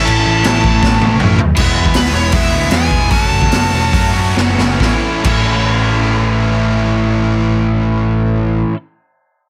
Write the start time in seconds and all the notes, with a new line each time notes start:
Already playing: A2 E3 A3 C#4 E4
0.05 A1 A5, crash
0.27 A1
0.44 A1 A2 E3 A3 C#4 E4, snare, crash
0.64 A1 E3 A3, kick
0.69 A2
0.83 A1, kick, snare
1.01 A1, high tom
1.20 A1 A2 E3 A3 C#4 E4, mid tom
1.39 D2, floor tom
1.55 E1 E3 G#3 B3, kick, crash
1.59 E4
1.77 E1
1.86 kick
1.94 D2 B4, snare, open hi-hat
2.14 E1 C#5
2.32 E1 E3 G#3 B3 E4 E5, kick, open hi-hat
2.52 D2 E3 G#3 B3 E4
2.70 E2 E3 G#3 G#5, snare, open hi-hat
2.74 B3 E4
2.91 E1, kick
3.10 F#1 F#3 A3 C#4 F#4 G#5, kick, open hi-hat
3.22 A5
3.31 F#1
3.42 kick
3.52 F#1, snare, open hi-hat
3.73 E1
3.92 F#2 F#3 A3 C#4 F#4, kick, open hi-hat
4.13 F#2 F#3 A3 C#4 F#4
4.35 F#1 F#3 A3 C#4, snare
4.39 F#4
4.58 F#1, snare
4.77 A1 A2 E3 A3 C#4 E4 A4, kick
4.82 snare
5.22 A1 A2 E3 A3 C#4 E4, kick, crash
5.27 A4